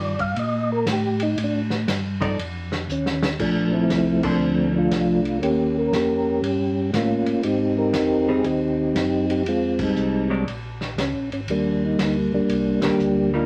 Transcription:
Already playing: tonewheel organ G2 D5, hollow-body jazz guitar D#3 G3 D4 F4
0.19 tonewheel organ F5, kick, ride
0.36 tonewheel organ A#2 D#5, ride
0.72 tonewheel organ A#4
0.86 tonewheel organ A2, snare, hi-hat pedal, ride
0.92 tonewheel organ G4
1.20 tonewheel organ D#4, ride
1.37 tonewheel organ A2, ride
1.44 tonewheel organ D4
1.70 snare
1.87 tonewheel organ G2, snare, hi-hat pedal, ride
2.21 hollow-body jazz guitar F3 D#4 A4 D5, kick, ride
2.38 tonewheel organ F2, ride
2.72 snare
2.89 tonewheel organ D#2 C#4, hi-hat pedal
3.06 snare
3.23 tonewheel organ C#4, snare
3.39 tonewheel organ A#1 F3 A3 D4, kick, crash
3.72 tonewheel organ A3 C4 E4
3.89 tonewheel organ C2, snare, hi-hat pedal, ride
4.23 tonewheel organ A3 D4, hollow-body jazz guitar A#3 D4 A4 C5, kick, crash
4.40 tonewheel organ D2
4.76 tonewheel organ A3 D4 F4
4.91 tonewheel organ C2, snare, hi-hat pedal, ride
5.25 ride
5.40 tonewheel organ D#2 A#3 C#4 G4, ride
5.79 tonewheel organ A#4
5.92 tonewheel organ F2 C#4 G4 A#4, snare, hi-hat pedal, ride
6.42 tonewheel organ G2, ride
6.93 tonewheel organ A2 A#3 C#4 F4, snare, hi-hat pedal, ride
7.26 tonewheel organ A2, ride
7.43 tonewheel organ G#2 C4 D#4 G4, ride
7.78 tonewheel organ D#4 G4 A#4
7.93 tonewheel organ F2, snare, hi-hat pedal, ride
8.28 hollow-body jazz guitar G3 C4 D#4, tonewheel organ G#4
8.44 tonewheel organ D#2 C4 D#4 G4, ride
8.94 tonewheel organ F#2, snare, hi-hat pedal, ride
9.30 tonewheel organ G4, ride
9.44 tonewheel organ F2, ride
9.48 tonewheel organ G#3 C4 F4
9.79 tonewheel organ G3 G#3 D#4, kick, crash
9.96 tonewheel organ C2, hi-hat pedal
10.30 hollow-body jazz guitar F#3 G#3 D4
10.46 tonewheel organ A#1, ride
10.81 snare
10.97 tonewheel organ C#2 C#4, snare, hi-hat pedal, ride
11.13 tonewheel organ A#1
11.31 tonewheel organ G#1 C#4, ride
11.47 tonewheel organ D#2 G3 A#3 D4, ride
11.85 tonewheel organ D#4
11.98 tonewheel organ D2 D#4, snare, hi-hat pedal, ride
12.32 tonewheel organ D2 G3 A#3 D4
12.49 tonewheel organ C2, ride
12.82 tonewheel organ C2 A#3 D4 G4, hollow-body jazz guitar D#3 G3 A#3 D4, snare, ride
12.99 tonewheel organ D2, hi-hat pedal
13.34 hollow-body jazz guitar G3 A#3 D#4, tonewheel organ A#3 F4

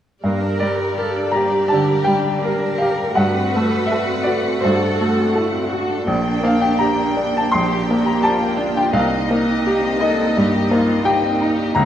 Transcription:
0.23 grand piano G2, viola section G3 G4, violin section A#3 D5, cello section A#4
0.43 violin section D4
0.60 grand piano G3 D5, violin section G4
0.79 violin section A#4
0.98 violin section G4, cello section A4, grand piano A#4
1.15 violin section D4
1.32 violin section A#3, cello section G4, grand piano A#5
1.36 grand piano G4
1.54 violin section D4
1.68 violin section G4, grand piano A5
1.73 grand piano D3
1.87 violin section A#4
2.04 grand piano G3 G5, violin section G4
2.23 violin section D4
2.42 violin section A#3, cello section A#4, grand piano A#4
2.59 violin section D4
2.76 violin section G4, grand piano F5
2.82 grand piano G4
2.96 violin section A#4
3.15 grand piano G2 F#5, violin section A3 F#5, viola section A3 F#4, cello section B4
3.34 violin section C4
3.54 grand piano A3, violin section F#4
3.71 violin section A4
3.86 violin section F#4, grand piano E5
3.92 grand piano A4
4.07 violin section C4
4.23 violin section A3, grand piano F#4 D5
4.43 violin section C4
4.61 violin section F#4, cello section A4, grand piano C5
4.65 grand piano G2
4.79 violin section A4
4.97 grand piano A3, violin section F#4
5.17 violin section C4
5.35 violin section A3, cello section E4, grand piano A4
5.52 violin section C4
5.71 cello section D4, violin section F#4, grand piano F#4
5.90 violin section A4
6.07 grand piano A#1, violin section G3 G5, viola section A#3 D4
6.25 violin section A#3
6.43 grand piano A#3 F5, violin section D4
6.62 violin section G4, grand piano G5
6.79 violin section D4, grand piano G4 A#5
6.99 violin section A#3
7.16 violin section G3, grand piano D4
7.35 violin section A#3, grand piano A5
7.52 grand piano A#1 C6, violin section D4, cello section G4
7.70 violin section G4
7.88 grand piano A#3, violin section D4
8.04 violin section A#3, grand piano A#5
8.21 violin section G3, cello section F4, grand piano G4 A5
8.42 violin section A#3
8.57 grand piano D4, violin section D4
8.77 violin section G4, grand piano G5
8.93 grand piano C2 F5, violin section A#3 D#5, viola section D#4, cello section D#4
9.12 violin section C4
9.30 grand piano A#3, violin section D#4
9.48 violin section G4
9.65 violin section D#4, grand piano G4, cello section G4
9.81 violin section C4
9.98 violin section A#3, grand piano D#4 D#5, cello section A4
10.17 violin section C4
10.36 grand piano G2, violin section D#4, cello section G4
10.54 violin section G4
10.71 grand piano A#3, violin section D#4, cello section F4
10.88 violin section C4
11.05 violin section A#3, cello section D#4, grand piano G4 G5
11.24 violin section C4
11.42 grand piano D#4, violin section D#4
11.59 violin section G4
11.75 grand piano C#2 A#5, viola section A#3 E4, violin section A#3 C#5, cello section C#4

